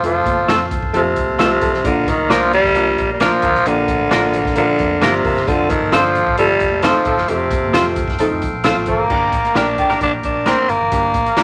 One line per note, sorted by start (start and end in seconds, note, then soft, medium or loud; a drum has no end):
0.00 0.22 F1 loud
0.00 0.27 F3 medium
0.00 0.27 A3 medium
0.00 1.81 A4 medium
0.00 1.80 C5 medium
0.00 1.81 F5 medium
0.00 1.81 A5 medium
0.00 closed hi-hat medium
0.00 muted conga soft
0.04 0.64 F3 medium
0.04 0.28 C4 medium
0.04 0.28 F4 medium
0.26 0.45 G1 medium
0.26 kick medium
0.26 closed hi-hat medium
0.26 muted conga soft
0.26 high conga medium
0.38 high conga medium
0.48 0.77 F1 medium
0.48 0.73 F3 medium
0.48 0.58 A3 medium
0.48 0.73 A3 medium
0.48 0.59 C4 medium
0.48 0.73 C4 medium
0.48 0.59 F4 medium
0.48 0.73 F4 medium
0.48 0.59 A4 medium
0.48 snare loud
0.48 closed hi-hat medium
0.48 muted conga soft
0.71 kick loud
0.71 closed hi-hat medium
0.71 muted conga soft
0.71 high conga medium
0.71 low conga medium
0.82 0.92 F1 medium
0.82 kick medium
0.94 1.13 F2 loud
0.94 1.37 C3 loud
0.94 1.01 F3 loud
0.94 1.18 F3 medium
0.94 1.01 A3 loud
0.94 1.18 A3 medium
0.94 1.01 C4 medium
0.94 1.18 C4 medium
0.94 1.18 F4 medium
0.94 1.01 A4 loud
0.94 closed hi-hat medium
0.94 muted conga soft
0.94 high conga medium
1.16 1.36 C2 medium
1.16 kick medium
1.16 closed hi-hat medium
1.16 muted conga soft
1.27 high conga medium
1.38 1.58 C2 loud
1.38 1.88 C3 loud
1.38 1.48 F3 medium
1.38 1.63 F3 medium
1.38 1.48 A3 medium
1.38 1.49 A3 medium
1.38 1.63 A3 medium
1.38 1.48 C4 medium
1.38 1.49 C4 medium
1.38 1.63 C4 medium
1.38 1.63 F4 medium
1.38 1.49 F4 medium
1.38 1.48 A4 medium
1.38 1.49 A4 loud
1.38 snare loud
1.38 closed hi-hat medium
1.38 muted conga soft
1.51 high conga medium
1.61 1.81 B1 medium
1.61 1.75 F3 medium
1.61 1.76 A3 medium
1.61 1.75 C4 medium
1.61 1.76 A4 medium
1.61 kick loud
1.61 closed hi-hat medium
1.61 muted conga soft
1.61 low conga medium
1.73 snare soft
1.73 low conga medium
1.84 2.14 A#1 loud
1.84 2.11 D3 loud
1.84 2.08 F3 medium
1.84 2.08 A#3 medium
1.84 2.08 D4 medium
1.84 2.08 F4 medium
1.84 5.43 A#4 medium
1.84 5.43 D5 medium
1.84 9.06 F5 medium
1.84 5.43 A#5 medium
1.84 kick loud
1.84 closed hi-hat medium
1.84 muted conga soft
2.06 2.33 D#3 medium
2.06 kick medium
2.06 closed hi-hat medium
2.06 high conga medium
2.18 2.28 C2 medium
2.18 high conga medium
2.30 2.58 C2 medium
2.30 2.54 F3 medium
2.30 2.53 F3 loud
2.30 2.40 A#3 medium
2.30 2.54 A#3 medium
2.30 2.54 D4 medium
2.30 2.40 D4 medium
2.30 2.54 F4 medium
2.30 2.40 F4 medium
2.30 2.40 A#4 medium
2.30 snare loud
2.30 closed hi-hat loud
2.52 3.10 G3 loud
2.52 closed hi-hat medium
2.52 muted conga soft
2.52 high conga medium
2.52 low conga medium
2.64 2.73 D2 medium
2.64 kick medium
2.64 snare soft
2.75 2.94 C2 loud
2.75 2.82 F3 loud
2.75 2.99 F3 medium
2.75 2.82 A#3 medium
2.75 2.99 A#3 medium
2.75 2.82 D4 medium
2.75 2.99 D4 medium
2.75 2.99 F4 medium
2.75 2.82 A#4 loud
2.75 closed hi-hat medium
2.75 high conga medium
2.98 3.27 A#1 medium
2.98 kick medium
2.98 closed hi-hat medium
3.08 high conga medium
3.14 3.24 G3 medium
3.20 3.30 F3 medium
3.20 3.44 F3 medium
3.20 3.68 F3 loud
3.20 3.30 A#3 medium
3.20 3.45 A#3 medium
3.20 3.30 D4 medium
3.20 3.45 D4 medium
3.20 3.31 D4 medium
3.20 3.45 F4 medium
3.20 3.31 F4 medium
3.20 3.30 A#4 medium
3.20 3.31 A#4 loud
3.20 snare loud
3.20 closed hi-hat medium
3.20 muted conga soft
3.31 high conga medium
3.42 3.53 D2 medium
3.42 3.57 F3 medium
3.42 3.57 A#3 medium
3.42 3.57 D4 medium
3.42 3.57 A#4 medium
3.42 kick medium
3.42 closed hi-hat medium
3.42 muted conga soft
3.42 low conga medium
3.54 3.65 A#1 medium
3.54 snare soft
3.54 low conga medium
3.65 3.95 A#1 loud
3.65 4.57 D3 loud
3.65 3.90 F3 medium
3.65 3.90 A#3 medium
3.65 3.90 D4 medium
3.65 3.90 G4 medium
3.65 closed hi-hat medium
3.65 muted conga soft
3.88 kick medium
3.88 closed hi-hat medium
3.88 muted conga soft
3.88 high conga medium
3.99 4.10 A1 medium
3.99 high conga medium
4.11 4.40 A1 medium
4.11 4.35 F3 medium
4.11 4.21 A#3 medium
4.11 4.35 A#3 medium
4.11 4.21 D4 medium
4.11 4.35 D4 medium
4.11 4.21 F4 medium
4.11 4.36 F4 medium
4.11 4.22 A#4 medium
4.11 snare loud
4.11 closed hi-hat medium
4.11 muted conga soft
4.33 closed hi-hat medium
4.33 muted conga soft
4.33 high conga medium
4.33 low conga medium
4.45 4.55 A#1 medium
4.45 kick medium
4.45 snare soft
4.55 4.76 A#2 loud
4.55 5.04 D3 loud
4.55 4.63 F3 medium
4.55 4.81 F3 medium
4.55 4.63 A#3 loud
4.55 4.81 A#3 medium
4.55 4.63 D4 medium
4.55 4.81 D4 medium
4.55 4.81 F4 medium
4.55 4.63 A#4 loud
4.55 closed hi-hat medium
4.55 muted conga soft
4.55 high conga medium
4.79 4.99 F2 medium
4.79 kick medium
4.79 closed hi-hat medium
4.79 muted conga soft
4.91 high conga medium
5.01 5.21 G1 loud
5.01 5.49 C3 medium
5.01 5.12 F3 medium
5.01 5.26 F3 medium
5.01 5.11 A#3 medium
5.01 5.26 A#3 medium
5.01 5.11 D4 medium
5.01 5.12 D4 loud
5.01 5.26 D4 medium
5.01 5.12 F4 loud
5.01 5.26 F4 medium
5.01 5.11 A#4 medium
5.01 5.12 A#4 loud
5.01 snare loud
5.01 closed hi-hat medium
5.14 high conga medium
5.24 5.44 F#1 medium
5.24 5.39 F3 medium
5.24 5.38 A#3 medium
5.24 5.38 D4 medium
5.24 5.38 A#4 loud
5.24 kick medium
5.24 open hi-hat soft
5.24 low conga medium
5.36 snare soft
5.36 low conga medium
5.47 5.76 F1 loud
5.47 5.72 D3 loud
5.47 5.71 F3 medium
5.47 5.72 A3 medium
5.47 5.72 C4 medium
5.47 5.72 F4 medium
5.47 9.07 A4 medium
5.47 9.06 C5 medium
5.47 7.27 A5 medium
5.47 kick loud
5.47 closed hi-hat medium
5.47 muted conga soft
5.70 5.95 D#3 medium
5.70 kick loud
5.70 closed hi-hat medium
5.70 muted conga soft
5.70 high conga medium
5.81 5.91 G1 medium
5.81 high conga medium
5.92 6.21 G1 loud
5.92 6.17 F3 medium
5.92 6.38 F3 medium
5.92 6.17 A3 medium
5.92 6.02 C4 medium
5.92 6.17 C4 medium
5.92 6.17 D4 medium
5.92 6.03 F4 medium
5.92 6.03 A4 medium
5.92 6.03 C5 medium
5.92 snare loud
5.92 closed hi-hat loud
6.15 closed hi-hat medium
6.15 muted conga soft
6.15 high conga medium
6.15 low conga medium
6.26 6.38 A1 medium
6.26 kick medium
6.37 6.57 G1 medium
6.37 6.45 F3 medium
6.37 6.62 F3 medium
6.37 6.85 G3 loud
6.37 6.45 A3 medium
6.37 6.62 A3 medium
6.37 6.45 C4 loud
6.37 6.62 C4 medium
6.37 6.62 F4 medium
6.37 6.45 A4 loud
6.37 closed hi-hat medium
6.37 muted conga soft
6.37 high conga medium
6.60 6.89 F1 medium
6.60 kick medium
6.60 closed hi-hat medium
6.60 muted conga soft
6.72 high conga medium
6.82 7.31 F3 loud
6.82 7.07 F3 medium
6.82 6.93 F3 medium
6.82 7.08 A3 medium
6.82 6.93 A3 medium
6.82 6.93 C4 loud
6.82 7.08 C4 medium
6.82 6.93 C4 medium
6.82 7.08 D#4 medium
6.82 6.93 F4 medium
6.82 6.93 A4 loud
6.82 6.93 A4 medium
6.82 6.93 C5 loud
6.82 snare loud
6.82 closed hi-hat medium
6.95 high conga medium
7.05 7.15 A1 medium
7.05 7.20 F3 medium
7.05 7.21 A3 medium
7.05 7.20 C4 loud
7.05 7.21 A4 medium
7.05 kick medium
7.05 closed hi-hat medium
7.05 muted conga soft
7.05 low conga medium
7.17 7.27 F#1 medium
7.17 snare soft
7.17 low conga medium
7.28 7.58 F1 loud
7.28 8.20 C3 medium
7.28 7.53 F3 medium
7.28 7.53 A3 medium
7.28 7.53 C4 medium
7.28 7.53 G4 medium
7.28 9.09 G5 medium
7.28 closed hi-hat medium
7.28 muted conga soft
7.51 kick loud
7.51 closed hi-hat medium
7.51 muted conga soft
7.51 high conga medium
7.62 7.72 G1 medium
7.62 high conga medium
7.73 7.98 F3 medium
7.73 7.98 A3 medium
7.73 7.84 C4 medium
7.73 7.98 C4 medium
7.73 7.84 F4 medium
7.73 7.98 F4 medium
7.73 7.84 A4 medium
7.73 7.84 C5 medium
7.73 snare loud
7.73 closed hi-hat loud
7.96 kick medium
7.96 closed hi-hat medium
7.96 muted conga soft
7.96 high conga medium
7.96 low conga medium
8.08 8.17 F1 medium
8.08 kick medium
8.08 snare soft
8.19 8.27 F3 medium
8.19 8.43 F3 medium
8.19 8.26 A3 loud
8.19 8.44 A3 medium
8.19 8.26 C4 medium
8.19 8.44 C4 medium
8.19 8.44 D#4 medium
8.19 8.26 A4 loud
8.19 closed hi-hat medium
8.19 high conga medium
8.32 8.41 F2 loud
8.42 8.52 C2 medium
8.42 kick medium
8.42 closed hi-hat medium
8.53 8.72 A#1 loud
8.53 high conga medium
8.64 8.74 F3 medium
8.64 8.89 F3 medium
8.64 8.74 A3 medium
8.64 8.89 A3 medium
8.64 8.74 C4 medium
8.64 8.74 C4 loud
8.64 8.89 C4 medium
8.64 8.75 F4 medium
8.64 8.89 F4 loud
8.64 8.74 A4 medium
8.64 8.75 A4 medium
8.64 8.75 C5 medium
8.64 snare loud
8.64 closed hi-hat medium
8.76 8.86 A1 medium
8.76 high conga medium
8.86 9.06 G#1 medium
8.86 9.02 F3 medium
8.86 9.02 A3 medium
8.86 9.59 A#3 medium
8.86 9.01 C4 medium
8.86 9.02 A4 medium
8.86 kick medium
8.86 closed hi-hat medium
8.86 low conga medium
8.99 low conga medium
9.10 9.29 G1 medium
9.10 9.34 G3 medium
9.10 9.34 A#3 medium
9.10 9.34 D4 medium
9.10 9.35 G4 medium
9.10 11.43 A#4 medium
9.10 11.43 D5 medium
9.10 10.91 G5 medium
9.10 11.43 A#5 medium
9.10 kick loud
9.10 crash medium
9.32 9.52 A1 medium
9.32 kick loud
9.32 closed hi-hat medium
9.32 muted conga soft
9.32 high conga medium
9.44 closed hi-hat medium
9.44 high conga medium
9.55 9.84 A#1 medium
9.55 9.66 D3 medium
9.55 9.79 G3 medium
9.55 9.65 G3 medium
9.55 9.65 A#3 medium
9.55 9.80 A#3 medium
9.55 9.66 A#3 medium
9.55 9.80 D4 medium
9.55 9.66 D4 medium
9.55 10.02 D4 loud
9.55 9.80 G4 medium
9.55 9.65 G4 medium
9.55 9.66 G4 medium
9.55 9.66 A#4 medium
9.55 snare loud
9.55 closed hi-hat medium
9.78 9.93 D3 medium
9.78 9.93 G3 medium
9.78 9.93 A#3 medium
9.78 9.93 G4 loud
9.78 kick loud
9.78 closed hi-hat medium
9.78 high conga medium
9.78 low conga medium
9.90 9.99 A1 medium
9.90 9.98 A#3 soft
9.90 9.98 D4 soft
9.90 9.98 G4 medium
9.90 9.97 A#4 medium
9.90 snare soft
9.90 closed hi-hat soft
10.01 10.20 A#1 medium
10.01 10.25 G3 medium
10.01 10.25 A#3 medium
10.01 10.25 D4 medium
10.01 10.13 D4 loud
10.01 10.25 G4 medium
10.01 kick medium
10.01 closed hi-hat medium
10.01 muted conga soft
10.23 10.53 A#1 medium
10.23 10.49 D4 medium
10.23 kick medium
10.23 closed hi-hat medium
10.23 muted conga soft
10.34 high conga medium
10.46 10.70 G3 medium
10.46 10.56 A#3 medium
10.46 10.70 A#3 medium
10.46 10.71 C4 loud
10.46 10.56 D4 medium
10.46 10.71 D4 medium
10.46 10.71 G4 medium
10.46 10.57 G4 medium
10.46 10.57 A#4 medium
10.46 snare medium
10.46 closed hi-hat medium
10.46 muted conga soft
10.58 high conga medium
10.69 10.78 G1 medium
10.69 11.43 A#3 medium
10.69 closed hi-hat medium
10.69 muted conga soft
10.80 10.90 G1 medium
10.80 low conga medium
10.92 11.11 G1 loud
10.92 11.16 G3 medium
10.92 11.16 A#3 medium
10.92 11.16 D4 medium
10.92 11.16 G4 medium
10.92 11.43 F5 medium
10.92 kick loud
10.92 closed hi-hat medium
11.14 11.34 A1 medium
11.14 kick loud
11.14 closed hi-hat medium
11.14 muted conga soft
11.14 high conga medium
11.26 closed hi-hat medium
11.26 high conga medium
11.37 11.43 A#1 medium
11.37 11.43 G3 medium
11.37 11.43 A#3 medium
11.37 11.43 D4 medium
11.37 11.43 F4 medium
11.37 11.43 G4 medium
11.37 11.43 A#4 medium
11.37 snare loud
11.37 closed hi-hat medium